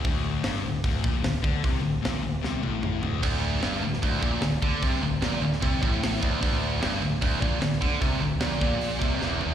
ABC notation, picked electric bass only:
X:1
M:4/4
L:1/8
Q:1/4=151
K:Cmix
V:1 name="Picked electric bass" clef=bass
D,,,2 G,,, D,,, D,,, B,,, D,,, D,, | C,, D,,, B,,, D,,, C,, A,,,2 D,,, | D,,,2 G,,, D,,, D,,, B,,, D,,, D,, | C,, D,,, B,,, D,,, C,, A,,,2 D,,, |
D,,,2 G,,, D,,, D,,, B,,, D,,, D,, | C,, D,,, B,,, B,,,2 C,, E,,,2 |]